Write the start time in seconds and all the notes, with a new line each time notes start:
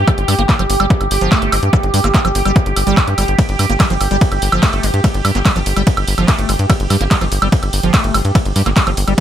Already playing: G4
0.08 G3, kick, closed hi-hat, high woodblock
0.18 G1, closed hi-hat
0.28 G2 G3, open hi-hat, high woodblock
0.39 G1 A#3, closed hi-hat
0.49 A3, kick, clap, closed hi-hat
0.59 G1 F3, closed hi-hat, high woodblock
0.70 G1, open hi-hat
0.80 G1 G3, closed hi-hat, high woodblock
0.90 kick, closed hi-hat
1.01 G1, closed hi-hat, high woodblock
1.11 G1, open hi-hat
1.21 G1 F3, closed hi-hat
1.32 A3, kick, clap, closed hi-hat, high woodblock
1.42 G1, closed hi-hat
1.52 G1 G3, open hi-hat, high woodblock
1.63 G2, closed hi-hat
1.73 G3, kick, closed hi-hat, high woodblock
1.83 G1, closed hi-hat
1.94 G2 G3, open hi-hat
2.04 G1 A#3, clap, closed hi-hat, high woodblock
2.14 A3, kick, clap, closed hi-hat
2.25 G1 F3, closed hi-hat, high woodblock
2.35 G1, open hi-hat
2.45 G1 G3, closed hi-hat, high woodblock
2.56 kick, closed hi-hat
2.66 G1, closed hi-hat
2.76 G1, open hi-hat, high woodblock
2.87 G1 G3, closed hi-hat
2.97 kick, clap, closed hi-hat, high woodblock
3.08 G2, closed hi-hat
3.18 G1 G3, open hi-hat, high woodblock
3.28 G1, closed hi-hat
3.39 G3, kick, closed hi-hat, ride
3.49 G1, closed hi-hat
3.59 G2 G3, open hi-hat, high woodblock
3.70 G1 A#3, closed hi-hat
3.80 G3, kick, clap, closed hi-hat, ride, high woodblock
3.90 G1 F3, closed hi-hat
4.01 G1, open hi-hat, high woodblock
4.11 G1 G3, closed hi-hat
4.21 kick, closed hi-hat, ride
4.32 G1, closed hi-hat, high woodblock
4.42 G1, open hi-hat
4.52 G1 F3, closed hi-hat, high woodblock
4.63 A3, kick, clap, closed hi-hat, ride
4.73 G1, closed hi-hat, high woodblock
4.83 G1 G3, open hi-hat
4.94 G2, closed hi-hat
5.04 G3, kick, closed hi-hat, ride, high woodblock
5.14 G1, closed hi-hat
5.25 G2 G3, open hi-hat, high woodblock
5.35 G1 A#3, clap, closed hi-hat
5.45 G3, kick, clap, closed hi-hat, ride, high woodblock
5.56 G1 F3, closed hi-hat
5.66 G1, open hi-hat
5.76 G1 G3, closed hi-hat, high woodblock
5.87 kick, closed hi-hat, ride
5.97 G1, closed hi-hat, high woodblock
6.08 G1, open hi-hat
6.18 G1 F3, closed hi-hat, high woodblock
6.28 A3, kick, clap, closed hi-hat, ride
6.39 G1, closed hi-hat
6.49 G1 G3, open hi-hat, high woodblock
6.59 G2, closed hi-hat
6.70 G3, kick, closed hi-hat, ride, high woodblock
6.80 G1, closed hi-hat
6.90 G2 G3, open hi-hat, high woodblock
7.01 G1 A#3, closed hi-hat
7.11 G3, kick, clap, closed hi-hat, ride
7.21 G1 F3, closed hi-hat, high woodblock
7.32 G1, open hi-hat
7.42 G1 G3, closed hi-hat, high woodblock
7.52 kick, closed hi-hat, ride
7.63 G1, closed hi-hat, high woodblock
7.73 G1, open hi-hat
7.83 G1 F3, closed hi-hat
7.94 A3, kick, clap, closed hi-hat, ride, high woodblock
8.04 G1, closed hi-hat
8.14 G1 G3, open hi-hat, high woodblock
8.25 G2, closed hi-hat
8.35 G3, kick, closed hi-hat, ride, high woodblock
8.45 G1, closed hi-hat
8.56 G2 G3, open hi-hat
8.66 G1 A#3, clap, closed hi-hat, high woodblock
8.76 G3, kick, clap, closed hi-hat, ride
8.87 G1 F3, closed hi-hat, high woodblock
8.97 G1, open hi-hat
9.08 G1 G3, closed hi-hat, high woodblock